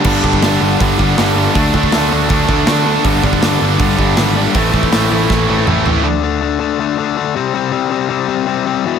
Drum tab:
CC |x---------------|----------------|----------------|----------------|
HH |----o---o---o---|o---o---o---o---|o---o---o---o---|o---o-----------|
SD |----o-------o---|----o-------o---|----o-------o---|----o---o-------|
T2 |----------------|----------------|----------------|------------o---|
FT |----------------|----------------|----------------|--------------o-|
BD |o-oo----o-o-----|o-oo----o-o-----|o-oo----o-o-----|o-oo----o-------|

CC |----------------|----------------|
HH |----------------|----------------|
SD |----------------|----------------|
T2 |----------------|----------------|
FT |----------------|----------------|
BD |----------------|----------------|